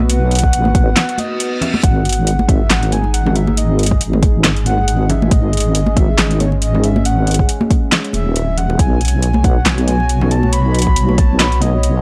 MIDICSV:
0, 0, Header, 1, 6, 480
1, 0, Start_track
1, 0, Key_signature, 5, "minor"
1, 0, Tempo, 434783
1, 105, Time_signature, 4, 2, 24, 8
1, 13266, End_track
2, 0, Start_track
2, 0, Title_t, "Soft synth lead"
2, 0, Program_c, 0, 80
2, 108, Note_on_c, 0, 78, 116
2, 1310, Note_on_c, 0, 75, 102
2, 1326, Note_off_c, 0, 78, 0
2, 1787, Note_on_c, 0, 76, 92
2, 1803, Note_off_c, 0, 75, 0
2, 2024, Note_on_c, 0, 78, 107
2, 2041, Note_off_c, 0, 76, 0
2, 2745, Note_on_c, 0, 76, 93
2, 2761, Note_off_c, 0, 78, 0
2, 2984, Note_on_c, 0, 78, 98
2, 3000, Note_off_c, 0, 76, 0
2, 3229, Note_on_c, 0, 80, 96
2, 3245, Note_off_c, 0, 78, 0
2, 3458, Note_off_c, 0, 80, 0
2, 3465, Note_on_c, 0, 78, 96
2, 3706, Note_on_c, 0, 76, 87
2, 3723, Note_off_c, 0, 78, 0
2, 3945, Note_on_c, 0, 75, 88
2, 3962, Note_off_c, 0, 76, 0
2, 4425, Note_off_c, 0, 75, 0
2, 5146, Note_on_c, 0, 78, 117
2, 5624, Note_on_c, 0, 76, 105
2, 5641, Note_off_c, 0, 78, 0
2, 5866, Note_on_c, 0, 75, 116
2, 5883, Note_off_c, 0, 76, 0
2, 6587, Note_on_c, 0, 76, 101
2, 6603, Note_off_c, 0, 75, 0
2, 6828, Note_on_c, 0, 75, 102
2, 6844, Note_off_c, 0, 76, 0
2, 7061, Note_off_c, 0, 75, 0
2, 7067, Note_on_c, 0, 73, 87
2, 7175, Note_off_c, 0, 73, 0
2, 7307, Note_on_c, 0, 75, 95
2, 7550, Note_on_c, 0, 76, 98
2, 7566, Note_off_c, 0, 75, 0
2, 7789, Note_on_c, 0, 78, 102
2, 7805, Note_off_c, 0, 76, 0
2, 8267, Note_off_c, 0, 78, 0
2, 8989, Note_on_c, 0, 76, 105
2, 9465, Note_on_c, 0, 78, 102
2, 9481, Note_off_c, 0, 76, 0
2, 9709, Note_on_c, 0, 80, 119
2, 9725, Note_off_c, 0, 78, 0
2, 10427, Note_on_c, 0, 78, 105
2, 10443, Note_off_c, 0, 80, 0
2, 10669, Note_on_c, 0, 80, 106
2, 10686, Note_off_c, 0, 78, 0
2, 10897, Note_off_c, 0, 80, 0
2, 10904, Note_on_c, 0, 80, 114
2, 11383, Note_on_c, 0, 81, 107
2, 11399, Note_off_c, 0, 80, 0
2, 11614, Note_off_c, 0, 81, 0
2, 11621, Note_on_c, 0, 83, 127
2, 12343, Note_on_c, 0, 81, 111
2, 12359, Note_off_c, 0, 83, 0
2, 12574, Note_off_c, 0, 81, 0
2, 12581, Note_on_c, 0, 83, 112
2, 12818, Note_on_c, 0, 75, 106
2, 12835, Note_off_c, 0, 83, 0
2, 13266, Note_off_c, 0, 75, 0
2, 13266, End_track
3, 0, Start_track
3, 0, Title_t, "Analog synth pad"
3, 0, Program_c, 1, 89
3, 0, Note_on_c, 1, 59, 86
3, 0, Note_on_c, 1, 66, 79
3, 0, Note_on_c, 1, 71, 95
3, 1980, Note_off_c, 1, 59, 0
3, 1980, Note_off_c, 1, 66, 0
3, 1986, Note_off_c, 1, 71, 0
3, 2022, Note_on_c, 1, 56, 86
3, 2023, Note_on_c, 1, 63, 79
3, 2023, Note_on_c, 1, 68, 94
3, 5825, Note_off_c, 1, 63, 0
3, 5860, Note_on_c, 1, 61, 77
3, 9659, Note_off_c, 1, 56, 0
3, 9660, Note_off_c, 1, 68, 0
3, 9664, Note_off_c, 1, 61, 0
3, 9704, Note_on_c, 1, 73, 93
3, 9705, Note_on_c, 1, 59, 84
3, 9705, Note_on_c, 1, 66, 80
3, 13266, Note_off_c, 1, 59, 0
3, 13266, Note_off_c, 1, 66, 0
3, 13266, Note_off_c, 1, 73, 0
3, 13266, End_track
4, 0, Start_track
4, 0, Title_t, "Wobble bass"
4, 0, Program_c, 2, 39
4, 0, Note_on_c, 2, 35, 97
4, 568, Note_off_c, 2, 35, 0
4, 586, Note_on_c, 2, 33, 101
4, 1048, Note_off_c, 2, 33, 0
4, 2026, Note_on_c, 2, 32, 99
4, 2968, Note_off_c, 2, 32, 0
4, 2984, Note_on_c, 2, 32, 96
4, 4407, Note_off_c, 2, 32, 0
4, 4425, Note_on_c, 2, 32, 105
4, 5848, Note_off_c, 2, 32, 0
4, 5866, Note_on_c, 2, 32, 98
4, 6808, Note_off_c, 2, 32, 0
4, 6825, Note_on_c, 2, 32, 95
4, 8248, Note_off_c, 2, 32, 0
4, 8984, Note_on_c, 2, 27, 96
4, 9687, Note_off_c, 2, 27, 0
4, 9706, Note_on_c, 2, 35, 99
4, 10648, Note_off_c, 2, 35, 0
4, 10663, Note_on_c, 2, 35, 96
4, 12087, Note_off_c, 2, 35, 0
4, 12102, Note_on_c, 2, 35, 99
4, 13266, Note_off_c, 2, 35, 0
4, 13266, End_track
5, 0, Start_track
5, 0, Title_t, "Reverse cymbal"
5, 0, Program_c, 3, 119
5, 1065, Note_on_c, 3, 60, 60
5, 2025, Note_off_c, 3, 60, 0
5, 13266, End_track
6, 0, Start_track
6, 0, Title_t, "Drums"
6, 105, Note_on_c, 9, 42, 88
6, 216, Note_off_c, 9, 42, 0
6, 345, Note_on_c, 9, 42, 51
6, 389, Note_off_c, 9, 42, 0
6, 389, Note_on_c, 9, 42, 67
6, 426, Note_off_c, 9, 42, 0
6, 426, Note_on_c, 9, 42, 82
6, 480, Note_on_c, 9, 36, 60
6, 537, Note_off_c, 9, 42, 0
6, 586, Note_on_c, 9, 42, 88
6, 591, Note_off_c, 9, 36, 0
6, 697, Note_off_c, 9, 42, 0
6, 718, Note_on_c, 9, 63, 96
6, 826, Note_on_c, 9, 36, 103
6, 827, Note_on_c, 9, 42, 56
6, 828, Note_off_c, 9, 63, 0
6, 936, Note_off_c, 9, 36, 0
6, 937, Note_off_c, 9, 42, 0
6, 1066, Note_on_c, 9, 38, 117
6, 1066, Note_on_c, 9, 39, 91
6, 1066, Note_on_c, 9, 42, 86
6, 1177, Note_off_c, 9, 38, 0
6, 1177, Note_off_c, 9, 39, 0
6, 1177, Note_off_c, 9, 42, 0
6, 1202, Note_on_c, 9, 42, 40
6, 1300, Note_on_c, 9, 63, 67
6, 1307, Note_off_c, 9, 42, 0
6, 1307, Note_on_c, 9, 42, 57
6, 1411, Note_off_c, 9, 63, 0
6, 1418, Note_off_c, 9, 42, 0
6, 1546, Note_on_c, 9, 42, 85
6, 1656, Note_off_c, 9, 42, 0
6, 1782, Note_on_c, 9, 64, 102
6, 1785, Note_on_c, 9, 42, 57
6, 1893, Note_off_c, 9, 64, 0
6, 1896, Note_off_c, 9, 42, 0
6, 1920, Note_on_c, 9, 62, 67
6, 1920, Note_on_c, 9, 63, 86
6, 2025, Note_on_c, 9, 36, 124
6, 2026, Note_on_c, 9, 42, 87
6, 2031, Note_off_c, 9, 62, 0
6, 2031, Note_off_c, 9, 63, 0
6, 2136, Note_off_c, 9, 36, 0
6, 2136, Note_off_c, 9, 42, 0
6, 2266, Note_on_c, 9, 42, 52
6, 2311, Note_off_c, 9, 42, 0
6, 2311, Note_on_c, 9, 42, 66
6, 2346, Note_off_c, 9, 42, 0
6, 2346, Note_on_c, 9, 42, 81
6, 2457, Note_off_c, 9, 42, 0
6, 2506, Note_on_c, 9, 42, 85
6, 2616, Note_off_c, 9, 42, 0
6, 2640, Note_on_c, 9, 63, 96
6, 2642, Note_on_c, 9, 62, 40
6, 2745, Note_on_c, 9, 36, 107
6, 2747, Note_on_c, 9, 42, 56
6, 2751, Note_off_c, 9, 63, 0
6, 2752, Note_off_c, 9, 62, 0
6, 2855, Note_off_c, 9, 36, 0
6, 2858, Note_off_c, 9, 42, 0
6, 2980, Note_on_c, 9, 62, 54
6, 2986, Note_on_c, 9, 38, 124
6, 2986, Note_on_c, 9, 39, 95
6, 2986, Note_on_c, 9, 42, 83
6, 3090, Note_off_c, 9, 62, 0
6, 3096, Note_off_c, 9, 38, 0
6, 3096, Note_off_c, 9, 39, 0
6, 3096, Note_off_c, 9, 42, 0
6, 3121, Note_on_c, 9, 42, 40
6, 3224, Note_on_c, 9, 63, 72
6, 3227, Note_off_c, 9, 42, 0
6, 3227, Note_on_c, 9, 42, 58
6, 3334, Note_off_c, 9, 63, 0
6, 3337, Note_off_c, 9, 42, 0
6, 3355, Note_on_c, 9, 62, 39
6, 3465, Note_off_c, 9, 62, 0
6, 3466, Note_on_c, 9, 42, 84
6, 3577, Note_off_c, 9, 42, 0
6, 3603, Note_on_c, 9, 64, 107
6, 3704, Note_on_c, 9, 42, 55
6, 3714, Note_off_c, 9, 64, 0
6, 3815, Note_off_c, 9, 42, 0
6, 3836, Note_on_c, 9, 63, 101
6, 3945, Note_on_c, 9, 42, 85
6, 3946, Note_off_c, 9, 63, 0
6, 4056, Note_off_c, 9, 42, 0
6, 4184, Note_on_c, 9, 42, 51
6, 4230, Note_off_c, 9, 42, 0
6, 4230, Note_on_c, 9, 42, 64
6, 4265, Note_off_c, 9, 42, 0
6, 4265, Note_on_c, 9, 42, 82
6, 4320, Note_on_c, 9, 36, 64
6, 4376, Note_off_c, 9, 42, 0
6, 4425, Note_on_c, 9, 42, 85
6, 4430, Note_off_c, 9, 36, 0
6, 4535, Note_off_c, 9, 42, 0
6, 4563, Note_on_c, 9, 63, 98
6, 4666, Note_on_c, 9, 36, 112
6, 4666, Note_on_c, 9, 42, 54
6, 4673, Note_off_c, 9, 63, 0
6, 4776, Note_off_c, 9, 36, 0
6, 4776, Note_off_c, 9, 42, 0
6, 4905, Note_on_c, 9, 38, 126
6, 4905, Note_on_c, 9, 39, 95
6, 4905, Note_on_c, 9, 42, 84
6, 5015, Note_off_c, 9, 38, 0
6, 5015, Note_off_c, 9, 39, 0
6, 5015, Note_off_c, 9, 42, 0
6, 5040, Note_on_c, 9, 42, 38
6, 5145, Note_off_c, 9, 42, 0
6, 5145, Note_on_c, 9, 42, 55
6, 5146, Note_on_c, 9, 63, 63
6, 5255, Note_off_c, 9, 42, 0
6, 5256, Note_off_c, 9, 63, 0
6, 5385, Note_on_c, 9, 42, 81
6, 5496, Note_off_c, 9, 42, 0
6, 5625, Note_on_c, 9, 42, 55
6, 5626, Note_on_c, 9, 64, 97
6, 5736, Note_off_c, 9, 42, 0
6, 5737, Note_off_c, 9, 64, 0
6, 5766, Note_on_c, 9, 62, 67
6, 5766, Note_on_c, 9, 63, 87
6, 5865, Note_on_c, 9, 42, 83
6, 5866, Note_on_c, 9, 36, 126
6, 5876, Note_off_c, 9, 62, 0
6, 5876, Note_off_c, 9, 63, 0
6, 5976, Note_off_c, 9, 36, 0
6, 5976, Note_off_c, 9, 42, 0
6, 6106, Note_on_c, 9, 42, 47
6, 6152, Note_off_c, 9, 42, 0
6, 6152, Note_on_c, 9, 42, 63
6, 6186, Note_off_c, 9, 42, 0
6, 6186, Note_on_c, 9, 42, 78
6, 6296, Note_off_c, 9, 42, 0
6, 6345, Note_on_c, 9, 42, 81
6, 6456, Note_off_c, 9, 42, 0
6, 6473, Note_on_c, 9, 63, 108
6, 6478, Note_on_c, 9, 62, 37
6, 6584, Note_off_c, 9, 63, 0
6, 6586, Note_on_c, 9, 36, 114
6, 6586, Note_on_c, 9, 42, 53
6, 6588, Note_off_c, 9, 62, 0
6, 6697, Note_off_c, 9, 36, 0
6, 6697, Note_off_c, 9, 42, 0
6, 6823, Note_on_c, 9, 62, 49
6, 6828, Note_on_c, 9, 38, 127
6, 6828, Note_on_c, 9, 39, 95
6, 6828, Note_on_c, 9, 42, 78
6, 6933, Note_off_c, 9, 62, 0
6, 6938, Note_off_c, 9, 38, 0
6, 6938, Note_off_c, 9, 39, 0
6, 6938, Note_off_c, 9, 42, 0
6, 6962, Note_on_c, 9, 42, 36
6, 7067, Note_off_c, 9, 42, 0
6, 7067, Note_on_c, 9, 42, 56
6, 7068, Note_on_c, 9, 63, 67
6, 7178, Note_off_c, 9, 42, 0
6, 7179, Note_off_c, 9, 63, 0
6, 7199, Note_on_c, 9, 62, 38
6, 7306, Note_on_c, 9, 42, 77
6, 7310, Note_off_c, 9, 62, 0
6, 7417, Note_off_c, 9, 42, 0
6, 7447, Note_on_c, 9, 64, 88
6, 7547, Note_on_c, 9, 42, 51
6, 7558, Note_off_c, 9, 64, 0
6, 7657, Note_off_c, 9, 42, 0
6, 7684, Note_on_c, 9, 63, 99
6, 7786, Note_on_c, 9, 42, 77
6, 7794, Note_off_c, 9, 63, 0
6, 7896, Note_off_c, 9, 42, 0
6, 8027, Note_on_c, 9, 42, 46
6, 8071, Note_off_c, 9, 42, 0
6, 8071, Note_on_c, 9, 42, 60
6, 8107, Note_off_c, 9, 42, 0
6, 8107, Note_on_c, 9, 42, 77
6, 8161, Note_on_c, 9, 36, 66
6, 8218, Note_off_c, 9, 42, 0
6, 8267, Note_on_c, 9, 42, 79
6, 8272, Note_off_c, 9, 36, 0
6, 8377, Note_off_c, 9, 42, 0
6, 8398, Note_on_c, 9, 63, 111
6, 8507, Note_on_c, 9, 36, 111
6, 8507, Note_on_c, 9, 42, 51
6, 8509, Note_off_c, 9, 63, 0
6, 8617, Note_off_c, 9, 36, 0
6, 8617, Note_off_c, 9, 42, 0
6, 8746, Note_on_c, 9, 38, 126
6, 8746, Note_on_c, 9, 39, 92
6, 8746, Note_on_c, 9, 42, 77
6, 8857, Note_off_c, 9, 38, 0
6, 8857, Note_off_c, 9, 39, 0
6, 8857, Note_off_c, 9, 42, 0
6, 8882, Note_on_c, 9, 42, 36
6, 8977, Note_on_c, 9, 63, 70
6, 8987, Note_off_c, 9, 42, 0
6, 8987, Note_on_c, 9, 42, 54
6, 9088, Note_off_c, 9, 63, 0
6, 9097, Note_off_c, 9, 42, 0
6, 9227, Note_on_c, 9, 42, 76
6, 9337, Note_off_c, 9, 42, 0
6, 9466, Note_on_c, 9, 64, 85
6, 9467, Note_on_c, 9, 42, 53
6, 9577, Note_off_c, 9, 64, 0
6, 9578, Note_off_c, 9, 42, 0
6, 9601, Note_on_c, 9, 63, 95
6, 9604, Note_on_c, 9, 62, 54
6, 9706, Note_on_c, 9, 36, 118
6, 9707, Note_on_c, 9, 42, 80
6, 9711, Note_off_c, 9, 63, 0
6, 9714, Note_off_c, 9, 62, 0
6, 9816, Note_off_c, 9, 36, 0
6, 9817, Note_off_c, 9, 42, 0
6, 9945, Note_on_c, 9, 42, 47
6, 9990, Note_off_c, 9, 42, 0
6, 9990, Note_on_c, 9, 42, 60
6, 10025, Note_off_c, 9, 42, 0
6, 10025, Note_on_c, 9, 42, 75
6, 10135, Note_off_c, 9, 42, 0
6, 10185, Note_on_c, 9, 42, 79
6, 10295, Note_off_c, 9, 42, 0
6, 10306, Note_on_c, 9, 62, 38
6, 10315, Note_on_c, 9, 63, 101
6, 10416, Note_off_c, 9, 62, 0
6, 10424, Note_on_c, 9, 42, 53
6, 10425, Note_off_c, 9, 63, 0
6, 10425, Note_on_c, 9, 36, 109
6, 10535, Note_off_c, 9, 42, 0
6, 10536, Note_off_c, 9, 36, 0
6, 10663, Note_on_c, 9, 38, 121
6, 10663, Note_on_c, 9, 39, 88
6, 10663, Note_on_c, 9, 42, 80
6, 10666, Note_on_c, 9, 62, 53
6, 10773, Note_off_c, 9, 38, 0
6, 10773, Note_off_c, 9, 39, 0
6, 10773, Note_off_c, 9, 42, 0
6, 10777, Note_off_c, 9, 62, 0
6, 10797, Note_on_c, 9, 42, 36
6, 10903, Note_off_c, 9, 42, 0
6, 10903, Note_on_c, 9, 42, 53
6, 10907, Note_on_c, 9, 63, 60
6, 11014, Note_off_c, 9, 42, 0
6, 11017, Note_off_c, 9, 63, 0
6, 11039, Note_on_c, 9, 62, 37
6, 11143, Note_on_c, 9, 42, 75
6, 11150, Note_off_c, 9, 62, 0
6, 11254, Note_off_c, 9, 42, 0
6, 11276, Note_on_c, 9, 64, 99
6, 11383, Note_on_c, 9, 42, 52
6, 11387, Note_off_c, 9, 64, 0
6, 11493, Note_off_c, 9, 42, 0
6, 11516, Note_on_c, 9, 63, 90
6, 11621, Note_on_c, 9, 42, 82
6, 11626, Note_off_c, 9, 63, 0
6, 11731, Note_off_c, 9, 42, 0
6, 11863, Note_on_c, 9, 42, 49
6, 11908, Note_off_c, 9, 42, 0
6, 11908, Note_on_c, 9, 42, 63
6, 11942, Note_off_c, 9, 42, 0
6, 11942, Note_on_c, 9, 42, 79
6, 11998, Note_on_c, 9, 36, 60
6, 12053, Note_off_c, 9, 42, 0
6, 12103, Note_on_c, 9, 42, 80
6, 12109, Note_off_c, 9, 36, 0
6, 12213, Note_off_c, 9, 42, 0
6, 12240, Note_on_c, 9, 63, 86
6, 12343, Note_on_c, 9, 36, 105
6, 12343, Note_on_c, 9, 42, 53
6, 12350, Note_off_c, 9, 63, 0
6, 12454, Note_off_c, 9, 36, 0
6, 12454, Note_off_c, 9, 42, 0
6, 12583, Note_on_c, 9, 38, 116
6, 12583, Note_on_c, 9, 39, 86
6, 12583, Note_on_c, 9, 42, 80
6, 12694, Note_off_c, 9, 38, 0
6, 12694, Note_off_c, 9, 39, 0
6, 12694, Note_off_c, 9, 42, 0
6, 12719, Note_on_c, 9, 42, 37
6, 12818, Note_on_c, 9, 63, 64
6, 12824, Note_off_c, 9, 42, 0
6, 12824, Note_on_c, 9, 42, 54
6, 12929, Note_off_c, 9, 63, 0
6, 12934, Note_off_c, 9, 42, 0
6, 13064, Note_on_c, 9, 42, 81
6, 13174, Note_off_c, 9, 42, 0
6, 13266, End_track
0, 0, End_of_file